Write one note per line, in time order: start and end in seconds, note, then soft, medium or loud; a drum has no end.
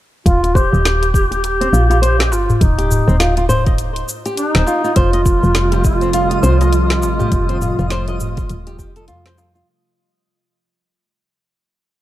0.26 0.66 D#1 medium
0.26 0.42 F4 medium
0.26 0.58 F4 loud
0.26 kick loud
0.26 closed hi-hat medium
0.26 shaker soft
0.43 0.50 F4 medium
0.43 closed hi-hat soft
0.43 darbuka ka medium
0.43 shaker soft
0.55 1.44 G4 loud
0.55 0.71 C5 medium
0.55 kick loud
0.55 shaker medium
0.73 1.68 D#1 loud
0.73 0.80 D#5 medium
0.73 darbuka ka soft
0.73 shaker soft
0.85 snare medium
0.85 closed hi-hat medium
0.85 shaker soft
1.02 closed hi-hat soft
1.02 darbuka tek medium
1.02 shaker soft
1.14 kick medium
1.14 shaker medium
1.31 1.59 G4 medium
1.31 closed hi-hat soft
1.31 shaker soft
1.44 2.34 G4 loud
1.44 closed hi-hat medium
1.44 darbuka ka medium
1.44 shaker soft
1.61 1.68 C4 medium
1.61 closed hi-hat soft
1.61 shaker soft
1.73 2.33 A#1 medium
1.73 1.89 F4 medium
1.73 shaker medium
1.90 1.97 F4 medium
1.90 closed hi-hat soft
1.90 darbuka tek medium
1.90 shaker soft
2.02 2.18 C5 medium
2.02 closed hi-hat medium
2.02 shaker soft
2.19 2.26 D#5 medium
2.19 snare medium
2.19 closed hi-hat soft
2.19 darbuka ka medium
2.19 shaker soft
2.31 2.55 G1 medium
2.31 2.55 F4 medium
2.31 darbuka tek medium
2.31 shaker medium
2.50 darbuka dum medium
2.50 shaker soft
2.55 2.63 F4 medium
2.61 3.01 D#1 medium
2.61 3.50 D#4 medium
2.61 kick loud
2.61 closed hi-hat medium
2.61 shaker soft
2.78 3.06 G4 medium
2.78 closed hi-hat soft
2.78 darbuka ka medium
2.78 shaker soft
2.91 darbuka dum medium
2.91 shaker medium
3.08 4.03 D#1 loud
3.08 3.15 C4 medium
3.08 darbuka ka soft
3.08 shaker soft
3.20 3.36 F4 medium
3.20 snare medium
3.20 closed hi-hat medium
3.20 shaker soft
3.37 3.44 F4 medium
3.37 closed hi-hat soft
3.37 darbuka tek medium
3.37 shaker soft
3.49 3.65 C5 loud
3.49 darbuka ka soft
3.49 darbuka dum medium
3.49 shaker medium
3.66 3.73 D#5 medium
3.66 kick loud
3.66 closed hi-hat soft
3.66 shaker soft
3.78 closed hi-hat medium
3.78 shaker soft
3.96 closed hi-hat soft
3.96 shaker soft
4.09 shaker medium
4.26 4.53 G4 medium
4.26 closed hi-hat soft
4.26 shaker soft
4.37 4.97 D#4 loud
4.37 closed hi-hat medium
4.37 shaker soft
4.55 4.64 D#1 medium
4.55 4.62 C4 medium
4.55 snare medium
4.55 closed hi-hat soft
4.55 shaker soft
4.67 4.83 F4 medium
4.67 darbuka ka medium
4.67 darbuka tek medium
4.67 shaker medium
4.84 4.91 F4 medium
4.84 shaker soft
4.96 5.36 F1 medium
4.96 9.63 C3 medium
4.96 9.63 F3 medium
4.96 9.63 G3 medium
4.96 9.63 A3 medium
4.96 5.84 F4 loud
4.96 9.63 F4 medium
4.96 5.12 C5 medium
4.96 9.68 D#5 medium
4.96 kick loud
4.96 closed hi-hat medium
4.96 shaker soft
5.13 5.20 D#5 medium
5.13 closed hi-hat soft
5.13 darbuka ka medium
5.13 shaker soft
5.26 kick loud
5.26 shaker medium
5.43 6.39 F1 medium
5.43 darbuka ka soft
5.43 shaker soft
5.55 snare medium
5.55 closed hi-hat medium
5.55 shaker soft
5.72 6.00 G4 medium
5.72 closed hi-hat soft
5.72 darbuka tek medium
5.72 shaker soft
5.84 9.04 F4 loud
5.84 kick loud
5.84 shaker medium
6.01 6.09 C4 medium
6.01 closed hi-hat soft
6.01 shaker soft
6.13 6.30 F4 medium
6.13 closed hi-hat medium
6.13 darbuka ka medium
6.13 shaker soft
6.31 6.38 F4 medium
6.31 closed hi-hat soft
6.31 shaker soft
6.43 7.04 C2 medium
6.43 6.59 C5 medium
6.43 shaker medium
6.60 6.68 D#5 medium
6.60 closed hi-hat soft
6.60 darbuka tek medium
6.60 shaker soft
6.73 closed hi-hat medium
6.73 shaker soft
6.90 snare medium
6.90 closed hi-hat soft
6.90 darbuka ka medium
6.90 shaker soft
7.03 7.26 A1 medium
7.03 darbuka tek medium
7.03 shaker medium
7.19 7.47 G4 medium
7.19 darbuka dum medium
7.19 shaker soft
7.32 7.72 F1 medium
7.32 kick loud
7.32 closed hi-hat medium
7.32 shaker soft
7.49 7.56 C4 medium
7.49 closed hi-hat soft
7.49 darbuka ka medium
7.49 shaker soft
7.61 7.77 F4 medium
7.61 darbuka dum medium
7.61 shaker medium
7.79 8.49 F1 loud
7.79 7.86 F4 medium
7.79 darbuka ka soft
7.79 darbuka tek soft
7.79 shaker soft
7.90 8.06 C5 loud
7.90 snare medium
7.90 closed hi-hat medium
7.90 shaker soft
8.08 8.15 D#5 medium
8.08 closed hi-hat soft
8.08 darbuka tek medium
8.08 shaker soft
8.20 darbuka ka soft
8.20 darbuka dum medium
8.20 shaker medium
8.37 kick loud
8.37 closed hi-hat soft
8.37 shaker soft
8.49 8.80 D#1 medium
8.49 closed hi-hat medium
8.49 shaker soft
8.67 8.78 G4 medium
8.67 closed hi-hat soft
8.67 shaker soft
8.79 9.11 F1 medium
8.79 8.95 G4 medium
8.79 kick medium
8.79 shaker medium
8.96 9.08 A4 medium
8.96 closed hi-hat soft
8.96 shaker soft
9.08 9.63 F2 medium
9.08 9.25 F4 medium
9.08 closed hi-hat medium
9.08 shaker soft
9.26 9.37 C5 medium
9.26 snare medium
9.26 closed hi-hat soft
9.26 shaker soft
9.38 9.54 F4 medium
9.38 darbuka ka medium
9.38 darbuka tek medium
9.38 shaker medium
9.55 9.67 F4 medium
9.55 shaker soft